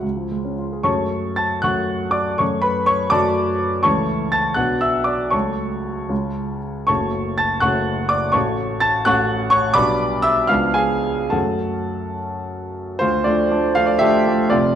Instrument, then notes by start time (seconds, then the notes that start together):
grand piano
0.03 C#2
0.16 F3
0.31 G#3
0.45 C#4
0.58 F4
0.72 G#4
0.83 F#2 F#3 A3 C#4 C#5 A5 C#6
1.36 A5 A6
1.62 F#2 F#3 A3 C#4 F#5 C#6 F#6
2.11 D5 D6
2.38 F#2 F#3 A3 C#4 C#5 C#6
2.62 B4 B5
2.86 C#5 C#6
3.10 F#2 F#3 A3 C#4 D5 A5 D6
3.83 C#2 E3 A3 C#4 C#5 A5 C#6
4.32 A5 A6
4.54 B1 F#3 B3 D4 F#5 F#6
4.81 E5 E6
5.04 D5 D6
5.30 C#2 F#3 A3 F#4 C#5 A5 C#6
6.09 C#2 G#3 C#4 F4
6.87 F#1 A3 C#4 F#4 C#5 A5 C#6
7.38 A5 A6
7.60 F#1 A3 C#4 F#4 F#5 C#6 F#6
8.09 D5 D6
8.32 A1 A3 C#4 F#4 C#5 A5 C#6
8.80 A5 A6
9.05 A1 A3 C#4 F#4 F#5 C#6 F#6
9.50 C#5 C#6
9.74 B1 G3 B3 D4 D5 B5 D6
10.22 E5 E6
10.47 C#2 F3 B3 D4 F5 F6
10.74 G#4 F5 G#5
11.30 F#2 F#3 A3 C#4 A4 F#5 A5
12.99 D2 F4 C5
13.24 F3 A3 D4 F4 D5
13.51 F3 A3 D4
13.75 F3 A3 D4 F5
13.86 D5
13.99 F3 A3 D4 G4 E5
14.27 F3 A3 D4
14.50 F1 F2 F4 D5